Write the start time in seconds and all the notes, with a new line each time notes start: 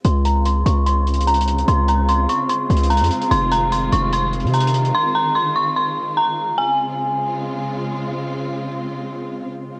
0.05 C#2 C#3 G#3 C4 F4 C6, closed hi-hat
0.25 A#5, closed hi-hat
0.45 C6, closed hi-hat
0.66 C#2 C#6, closed hi-hat
0.86 C6, closed hi-hat
1.07 closed hi-hat
1.14 closed hi-hat
1.20 closed hi-hat
1.27 A#5, closed hi-hat
1.34 closed hi-hat
1.41 closed hi-hat
1.48 closed hi-hat
1.58 closed hi-hat
1.68 C#2 C6, closed hi-hat
1.88 A#5, closed hi-hat
2.09 C6, closed hi-hat
2.29 C#6, closed hi-hat
2.49 C6, closed hi-hat
2.70 C#2, closed hi-hat
2.77 closed hi-hat
2.84 closed hi-hat
2.90 A#5, closed hi-hat
2.97 closed hi-hat
3.01 F2, closed hi-hat
3.11 closed hi-hat
3.22 closed hi-hat
3.31 F1 D#3 C6, closed hi-hat
3.52 A#5, closed hi-hat
3.72 C6, closed hi-hat
3.92 F1 C#6, closed hi-hat
4.13 C6, closed hi-hat
4.33 closed hi-hat
4.40 closed hi-hat
4.44 C3, closed hi-hat
4.54 A#5, closed hi-hat
4.60 closed hi-hat
4.67 closed hi-hat
4.74 closed hi-hat
4.85 closed hi-hat
4.95 C6
5.15 A#5
5.35 C6
5.56 C#6
5.76 C6
6.17 A#5
6.58 C#3 G#3 C4 F4 G#5